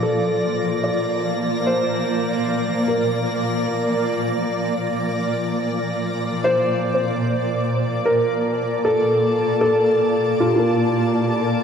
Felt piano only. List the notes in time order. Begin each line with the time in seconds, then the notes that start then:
0.03 A4
0.84 D5
1.67 C5
2.88 A#4
6.44 C5
8.05 A#4
8.85 A4
9.61 A4
10.40 F4
10.45 G4
10.56 F4